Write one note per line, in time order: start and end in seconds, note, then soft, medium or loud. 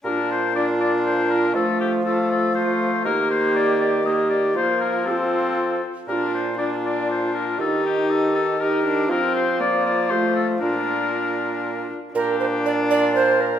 0.04 1.57 A#2 medium
0.04 0.52 D4 medium
0.04 0.10 G4 soft
0.04 0.28 A#4 medium
0.09 0.51 F4 medium
0.31 0.55 C5 medium
0.55 1.57 D4 medium
0.55 1.54 F4 medium
0.55 0.67 D5 medium
0.80 0.92 D5 medium
1.05 1.29 C5 medium
1.30 1.54 A#4 medium
1.55 3.04 F3 medium
1.55 2.05 A3 medium
1.55 2.05 F4 medium
1.55 1.80 A4 medium
1.81 1.92 G4 medium
2.06 2.55 A3 medium
2.06 2.55 F4 medium
2.06 2.30 A4 medium
2.31 2.55 A4 medium
2.55 3.08 A3 medium
2.55 3.07 F4 medium
2.55 3.05 C5 medium
3.05 4.53 D#3 medium
3.05 4.05 A#3 medium
3.05 4.05 G4 medium
3.05 3.30 A#4 medium
3.30 3.55 C5 medium
3.56 3.80 D5 medium
3.81 4.08 D5 medium
4.06 4.55 A#3 medium
4.06 4.57 G4 medium
4.06 4.29 D#5 medium
4.30 4.55 D5 medium
4.55 5.80 F3 medium
4.55 5.08 A#3 medium
4.55 5.06 F4 medium
4.55 4.80 C5 medium
4.81 5.08 A#4 medium
5.06 5.88 C4 medium
5.06 5.12 G4 soft
5.06 5.83 A4 medium
5.11 5.82 F4 soft
6.08 7.55 A#2 medium
6.08 6.56 D4 medium
6.08 6.55 F4 medium
6.08 6.13 G4 soft
6.08 6.32 A#4 medium
6.34 6.58 C5 medium
6.58 7.62 D4 medium
6.58 7.60 F4 medium
6.58 6.70 D5 medium
6.85 7.09 D5 medium
7.11 7.34 C5 medium
7.34 7.59 A#4 medium
7.59 9.11 D#3 medium
7.59 8.59 D#4 medium
7.59 8.59 G4 medium
7.59 7.84 A4 medium
7.86 8.12 G4 medium
8.10 8.35 A4 medium
8.35 8.62 A4 medium
8.60 8.84 D#4 medium
8.60 9.10 G4 medium
8.60 9.10 A#4 medium
8.85 9.11 D4 medium
9.09 10.62 F3 medium
9.09 9.61 C4 medium
9.09 10.10 F4 medium
9.09 9.35 A#4 medium
9.35 9.59 C5 medium
9.60 10.12 A#3 medium
9.60 9.85 D5 medium
9.86 10.12 D5 medium
10.10 10.62 A3 medium
10.10 10.15 G4 medium
10.10 10.35 C5 medium
10.14 10.61 F4 medium
10.36 10.47 A4 medium
10.61 11.87 A#2 medium
10.61 11.93 D4 medium
10.61 11.88 F4 medium
10.61 11.87 A#4 medium
12.15 13.59 A#2 medium
12.15 13.59 D4 medium
12.15 12.68 G4 medium
12.15 12.39 A#4 medium
12.40 12.46 C5 medium
12.66 13.59 F4 medium
12.66 12.72 D5 medium
12.91 13.15 D5 loud
13.15 13.42 C5 loud
13.41 13.59 A#4 medium